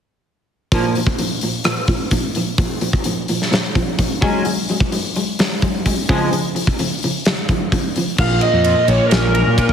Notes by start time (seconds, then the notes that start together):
0.72 A#2 F3 A#3, kick, open hi-hat
0.95 A#2 F3, open hi-hat
1.07 kick
1.18 A#2 F3, open hi-hat
1.41 A#2 F3, open hi-hat
1.64 A#2 F3, cross-stick, open hi-hat
1.88 A#2 F3, kick, open hi-hat
2.11 A#2 F3, kick, open hi-hat
2.35 A#2 F3, open hi-hat
2.58 A#2 F3, kick, open hi-hat
2.81 A#2 F3, open hi-hat
2.93 kick
3.04 A#2 F3, open hi-hat
3.28 A#2 F3, open hi-hat
3.42 snare
3.51 A#2 F3, snare, open hi-hat
3.75 A#2 F3, kick, open hi-hat
3.99 A#2 F3, kick, open hi-hat
4.21 F#3 G#3 C#4, kick, open hi-hat
4.45 F#3 G#3, open hi-hat
4.69 F#3 G#3, open hi-hat
4.80 kick
4.92 F#3 G#3, open hi-hat
5.16 F#3 G#3, open hi-hat
5.39 F#3 G#3, snare, open hi-hat
5.62 F#3 G#3, kick, open hi-hat
5.86 F#3 G#3, kick, open hi-hat
6.09 C#3 F3 G#3, kick
6.32 C#3 F3, open hi-hat
6.55 C#3 F3, open hi-hat
6.67 kick
6.79 C#3 F3, open hi-hat
7.03 C#3 F3, open hi-hat
7.25 C#3 F3, snare, open hi-hat
7.49 C#3 F3, kick, open hi-hat
7.72 C#3 F3, kick, open hi-hat
7.96 C#3 F3, open hi-hat
8.18 A#1 A#2 F5, kick, crash
8.41 D#5, ride
8.53 F2
8.64 F4, ride
8.88 A#1 A#3 C#5, ride
9.08 A#1 C#4 A#4, ride
9.12 snare
9.34 A#4, ride
9.47 A#2
9.58 F4, kick, ride
9.69 kick